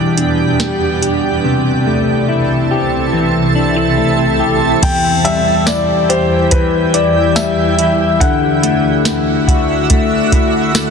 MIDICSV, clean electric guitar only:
0, 0, Header, 1, 2, 480
1, 0, Start_track
1, 0, Key_signature, 1, "minor"
1, 0, Tempo, 845070
1, 822, Time_signature, 4, 2, 24, 8
1, 6192, End_track
2, 0, Start_track
2, 0, Title_t, "Clean electric guitar"
2, 0, Program_c, 0, 27
2, 0, Note_on_c, 0, 40, 78
2, 0, Note_on_c, 0, 52, 63
2, 0, Note_on_c, 0, 55, 56
2, 0, Note_on_c, 0, 62, 53
2, 0, Note_on_c, 0, 67, 62
2, 94, Note_off_c, 0, 62, 0
2, 101, Note_on_c, 0, 62, 50
2, 339, Note_off_c, 0, 55, 0
2, 341, Note_on_c, 0, 55, 48
2, 576, Note_off_c, 0, 67, 0
2, 578, Note_on_c, 0, 67, 56
2, 820, Note_on_c, 0, 48, 71
2, 822, Note_off_c, 0, 40, 0
2, 869, Note_off_c, 0, 62, 0
2, 1056, Note_off_c, 0, 55, 0
2, 1058, Note_on_c, 0, 57, 54
2, 1075, Note_off_c, 0, 67, 0
2, 1298, Note_on_c, 0, 64, 52
2, 1539, Note_on_c, 0, 67, 59
2, 1776, Note_off_c, 0, 52, 0
2, 1778, Note_on_c, 0, 52, 60
2, 2015, Note_off_c, 0, 64, 0
2, 2017, Note_on_c, 0, 62, 57
2, 2138, Note_off_c, 0, 62, 0
2, 2138, Note_on_c, 0, 64, 40
2, 2250, Note_off_c, 0, 57, 0
2, 2257, Note_on_c, 0, 57, 50
2, 2496, Note_off_c, 0, 67, 0
2, 2498, Note_on_c, 0, 67, 58
2, 2738, Note_on_c, 0, 40, 86
2, 2741, Note_off_c, 0, 48, 0
2, 2787, Note_off_c, 0, 57, 0
2, 2788, Note_off_c, 0, 64, 0
2, 2981, Note_on_c, 0, 55, 63
2, 3221, Note_on_c, 0, 64, 61
2, 3459, Note_off_c, 0, 67, 0
2, 3461, Note_on_c, 0, 67, 74
2, 3698, Note_off_c, 0, 52, 0
2, 3701, Note_on_c, 0, 52, 67
2, 3939, Note_off_c, 0, 64, 0
2, 3942, Note_on_c, 0, 64, 68
2, 4176, Note_off_c, 0, 55, 0
2, 4182, Note_on_c, 0, 55, 61
2, 4421, Note_off_c, 0, 64, 0
2, 4423, Note_on_c, 0, 64, 70
2, 4660, Note_off_c, 0, 40, 0
2, 4661, Note_off_c, 0, 52, 0
2, 4663, Note_on_c, 0, 50, 91
2, 4709, Note_off_c, 0, 67, 0
2, 4710, Note_off_c, 0, 55, 0
2, 4901, Note_on_c, 0, 57, 66
2, 5138, Note_off_c, 0, 64, 0
2, 5141, Note_on_c, 0, 64, 64
2, 5382, Note_on_c, 0, 66, 69
2, 5616, Note_off_c, 0, 57, 0
2, 5623, Note_on_c, 0, 57, 81
2, 5862, Note_off_c, 0, 64, 0
2, 5864, Note_on_c, 0, 64, 67
2, 6097, Note_off_c, 0, 57, 0
2, 6104, Note_on_c, 0, 57, 67
2, 6192, Note_off_c, 0, 50, 0
2, 6192, Note_off_c, 0, 57, 0
2, 6192, Note_off_c, 0, 64, 0
2, 6192, Note_off_c, 0, 66, 0
2, 6192, End_track
0, 0, End_of_file